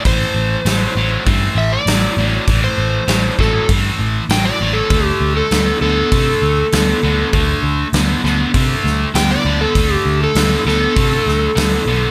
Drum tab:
HH |o-o-o-o-|o-o-o-o-|o-o-o-o-|o-o-o-o-|
SD |--o---o-|--oo--o-|--o---o-|--oo-oo-|
BD |o---o---|o--oo---|o---o---|o---o---|

HH |o-o-o-o-|
SD |--oo-oo-|
BD |o---o---|